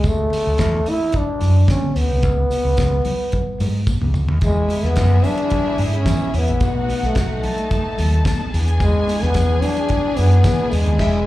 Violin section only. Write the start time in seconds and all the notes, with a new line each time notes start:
4.42 E4 E5
6.60 F#4 F#5
7.41 A4 A5
8.51 G#4 G#5
10.99 E4 E5